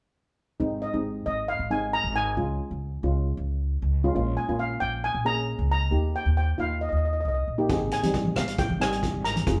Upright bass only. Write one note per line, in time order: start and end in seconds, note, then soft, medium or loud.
0.60 0.80 G#1 medium
0.94 1.24 G#1 medium
1.26 1.57 G#1 medium
1.59 2.00 G#1 medium
2.04 2.34 G#1 medium
2.37 2.58 C#2 medium
2.71 3.01 C#2 medium
3.03 3.34 C#2 medium
3.37 3.78 C#2 medium
3.82 4.12 C#2 medium
4.16 4.36 A#1 medium
4.49 4.79 A#1 medium
4.81 5.12 A#1 medium
5.14 5.55 A#1 medium
5.59 5.89 C#2 medium
5.92 6.12 D#2 medium
6.26 6.56 D#2 medium
6.58 6.89 D#2 medium
6.92 7.23 D#2 medium
7.25 7.45 C2 medium
7.48 7.67 A#1 medium
7.70 7.90 G#1 medium
8.03 8.33 G#1 medium
8.36 8.67 G#1 medium
8.70 9.10 G#1 medium
9.14 9.44 G#1 medium
9.47 9.60 F1 medium